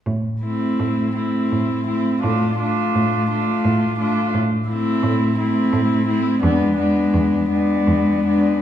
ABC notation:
X:1
M:3/4
L:1/8
Q:1/4=84
K:Am
V:1 name="Cello"
z E2 E2 E | F F2 F2 F | z E2 E2 E | D D2 D2 D |]
V:2 name="Cello"
z C2 C2 C | D D2 D2 D | z C2 C2 C | B, B,2 B,2 B, |]
V:3 name="Cello"
z A,2 A,2 A, | A, A,2 A,2 A, | z A,2 A,2 A, | ^G, G,2 G,2 G, |]
V:4 name="Cello" clef=bass
A,,2 A,,2 A,,2 | A,,2 A,,2 A,,2 | A,,2 A,,2 A,,2 | E,,2 E,,2 E,,2 |]